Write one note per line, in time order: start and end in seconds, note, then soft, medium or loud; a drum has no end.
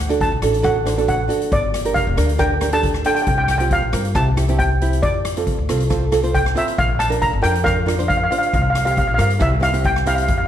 0.00 0.28 D2 loud
0.00 0.22 F#5 loud
0.09 0.29 D4 medium
0.09 0.29 F#4 medium
0.09 0.30 A4 medium
0.09 closed hi-hat medium
0.21 0.62 A5 medium
0.21 kick medium
0.21 closed hi-hat medium
0.32 0.41 C2 medium
0.42 1.26 A1 loud
0.42 0.56 D4 medium
0.42 0.56 F#4 medium
0.42 0.56 A4 medium
0.42 cross-stick medium
0.42 closed hi-hat medium
0.54 closed hi-hat medium
0.62 0.77 D4 medium
0.62 0.77 F#4 medium
0.62 0.77 A4 medium
0.62 1.07 F#5 medium
0.62 kick loud
0.62 cross-stick medium
0.62 closed hi-hat medium
0.85 0.93 D4 medium
0.85 0.93 F#4 medium
0.85 0.93 C5 medium
0.85 cross-stick medium
0.85 closed hi-hat medium
0.97 1.17 D4 medium
0.97 1.17 F#4 medium
0.97 1.18 A4 medium
0.97 closed hi-hat medium
1.08 1.39 F#5 loud
1.08 kick medium
1.08 closed hi-hat medium
1.28 1.51 D4 medium
1.28 1.51 F#4 medium
1.28 1.51 A4 medium
1.28 closed hi-hat medium
1.41 closed hi-hat medium
1.52 2.03 G1 loud
1.52 1.93 D5 loud
1.52 kick loud
1.52 closed hi-hat medium
1.74 cross-stick medium
1.74 closed hi-hat medium
1.85 2.05 D4 medium
1.85 2.05 G4 medium
1.85 2.05 A#4 medium
1.85 closed hi-hat medium
1.94 2.40 F5 medium
1.94 kick medium
1.94 closed hi-hat medium
2.07 2.17 E1 medium
2.17 3.02 D2 loud
2.17 2.31 D4 medium
2.17 2.31 G4 medium
2.17 2.31 A#4 medium
2.17 cross-stick medium
2.17 closed hi-hat medium
2.29 closed hi-hat medium
2.38 2.52 D4 medium
2.38 2.53 G4 medium
2.38 2.53 A#4 medium
2.38 2.74 G5 medium
2.38 kick loud
2.38 cross-stick medium
2.38 closed hi-hat medium
2.61 2.68 D4 medium
2.61 2.68 G4 medium
2.61 2.68 A#4 medium
2.61 cross-stick medium
2.61 closed hi-hat medium
2.72 2.92 D4 medium
2.72 2.93 G4 medium
2.72 2.93 A4 medium
2.72 3.07 A5 loud
2.72 closed hi-hat medium
2.83 kick medium
2.83 closed hi-hat medium
2.94 cross-stick medium
3.04 3.27 D4 medium
3.04 3.27 G4 medium
3.04 3.27 A4 medium
3.04 3.13 G5 loud
3.04 closed hi-hat medium
3.15 3.21 G5 medium
3.15 closed hi-hat medium
3.22 3.27 G5 medium
3.27 3.78 C2 loud
3.27 3.36 G5 medium
3.27 kick loud
3.27 closed hi-hat medium
3.38 3.43 G5 medium
3.44 3.50 G5 medium
3.48 3.57 G5 medium
3.48 cross-stick medium
3.48 closed hi-hat loud
3.58 3.80 C4 medium
3.58 3.80 F4 medium
3.58 3.80 G4 medium
3.58 3.66 G5 medium
3.58 closed hi-hat medium
3.71 4.17 F5 medium
3.71 kick medium
3.71 closed hi-hat medium
3.82 3.92 A#1 medium
3.92 4.13 G2 loud
3.92 4.06 C4 medium
3.92 4.07 F4 medium
3.92 4.07 A#4 medium
3.92 cross-stick medium
3.92 closed hi-hat medium
4.05 closed hi-hat medium
4.15 4.99 C2 loud
4.15 4.29 C4 medium
4.15 4.29 E4 medium
4.15 4.29 G4 medium
4.15 4.60 A5 medium
4.15 kick loud
4.15 cross-stick medium
4.15 closed hi-hat medium
4.37 4.44 C4 medium
4.37 4.44 E4 medium
4.37 4.44 G4 medium
4.37 cross-stick medium
4.37 closed hi-hat medium
4.48 4.68 C4 medium
4.48 4.69 E4 medium
4.48 4.69 G4 medium
4.48 closed hi-hat medium
4.59 4.90 G5 loud
4.59 kick medium
4.59 closed hi-hat medium
4.81 5.03 C4 medium
4.81 5.03 E4 medium
4.81 5.03 G4 medium
4.81 closed hi-hat medium
4.93 closed hi-hat medium
5.03 5.54 F2 loud
5.03 6.38 D5 loud
5.03 kick loud
5.03 closed hi-hat medium
5.25 cross-stick medium
5.25 closed hi-hat medium
5.37 5.56 C4 medium
5.37 5.56 F4 medium
5.37 5.56 A4 medium
5.37 closed hi-hat medium
5.47 kick medium
5.47 closed hi-hat medium
5.58 5.68 D2 medium
5.69 6.53 C2 loud
5.69 5.82 C4 medium
5.69 5.82 F4 medium
5.69 5.83 A4 medium
5.69 cross-stick medium
5.69 closed hi-hat medium
5.80 closed hi-hat medium
5.90 6.04 C4 medium
5.90 6.04 F4 loud
5.90 6.04 A4 loud
5.90 kick loud
5.90 cross-stick medium
5.90 closed hi-hat medium
6.12 6.19 C4 medium
6.12 6.19 F4 medium
6.12 6.19 A4 medium
6.12 cross-stick medium
6.12 closed hi-hat medium
6.23 6.43 C4 medium
6.23 6.43 F4 medium
6.23 6.43 C5 medium
6.23 closed hi-hat medium
6.34 6.57 G5 loud
6.34 kick medium
6.34 closed hi-hat medium
6.46 cross-stick medium
6.55 6.78 C4 medium
6.55 6.77 F4 medium
6.55 6.78 C5 medium
6.55 6.79 E5 loud
6.55 closed hi-hat medium
6.68 closed hi-hat medium
6.78 7.29 A#1 loud
6.78 6.88 F5 loud
6.78 kick loud
6.78 closed hi-hat medium
6.99 7.22 A5 loud
6.99 cross-stick medium
6.99 closed hi-hat medium
7.09 7.30 D4 medium
7.09 7.30 F4 medium
7.09 7.30 A#4 medium
7.09 closed hi-hat medium
7.22 7.44 A#5 loud
7.22 kick medium
7.22 closed hi-hat medium
7.33 7.43 G1 medium
7.42 8.27 F2 loud
7.42 7.56 D4 medium
7.42 7.56 F4 medium
7.42 7.56 A#4 medium
7.42 7.66 G5 loud
7.42 cross-stick medium
7.42 closed hi-hat medium
7.55 closed hi-hat medium
7.64 7.78 D4 medium
7.64 7.78 F4 medium
7.64 7.78 A#4 medium
7.64 8.07 F5 loud
7.64 kick loud
7.64 cross-stick medium
7.64 closed hi-hat medium
7.86 7.94 D4 medium
7.86 7.94 F4 medium
7.86 7.94 A#4 medium
7.86 cross-stick medium
7.86 closed hi-hat medium
7.98 8.18 D4 medium
7.98 8.19 F4 medium
7.98 8.18 C5 medium
7.98 closed hi-hat medium
8.08 8.16 F5 medium
8.08 kick medium
8.08 closed hi-hat medium
8.17 8.22 F5 medium
8.24 8.30 F5 medium
8.31 8.53 D4 medium
8.31 8.53 F4 medium
8.31 8.54 C5 medium
8.31 8.37 F5 medium
8.31 closed hi-hat medium
8.38 8.45 F5 medium
8.43 8.54 F5 medium
8.43 closed hi-hat medium
8.53 9.05 C2 loud
8.53 8.61 F5 medium
8.53 kick loud
8.53 closed hi-hat medium
8.62 8.69 F5 medium
8.70 8.77 F5 medium
8.75 8.84 F5 medium
8.75 cross-stick medium
8.75 closed hi-hat medium
8.85 9.06 C4 medium
8.85 9.06 F4 medium
8.85 9.06 G4 medium
8.85 8.90 F5 medium
8.85 closed hi-hat medium
8.91 8.97 F5 medium
8.97 9.06 F5 medium
8.97 kick medium
8.97 closed hi-hat medium
9.08 9.18 A#1 medium
9.08 9.13 F5 medium
9.14 9.32 C4 medium
9.14 9.32 F4 medium
9.14 9.20 F5 medium
9.18 9.39 G2 loud
9.18 9.32 A#4 medium
9.18 9.29 F5 medium
9.18 cross-stick medium
9.18 closed hi-hat medium
9.30 closed hi-hat medium
9.39 10.25 C2 loud
9.39 9.54 C4 medium
9.39 9.54 E4 medium
9.39 9.54 G4 medium
9.39 9.64 E5 loud
9.39 kick loud
9.39 cross-stick medium
9.39 closed hi-hat medium
9.60 9.68 C4 medium
9.60 9.69 E4 medium
9.60 9.69 G4 medium
9.60 9.86 F5 loud
9.60 cross-stick medium
9.60 closed hi-hat medium
9.73 9.93 C4 medium
9.73 9.94 E4 medium
9.73 9.94 G4 medium
9.73 closed hi-hat medium
9.84 10.08 G5 loud
9.84 kick loud
9.84 closed hi-hat medium
9.96 cross-stick medium
10.06 10.28 C4 medium
10.06 10.29 E4 medium
10.06 10.29 G4 medium
10.06 10.14 F5 medium
10.06 closed hi-hat medium
10.15 10.22 F5 medium
10.15 closed hi-hat medium
10.23 10.28 F5 medium
10.28 10.48 F2 loud
10.28 10.36 F5 medium
10.28 kick loud
10.28 closed hi-hat medium
10.38 10.44 F5 medium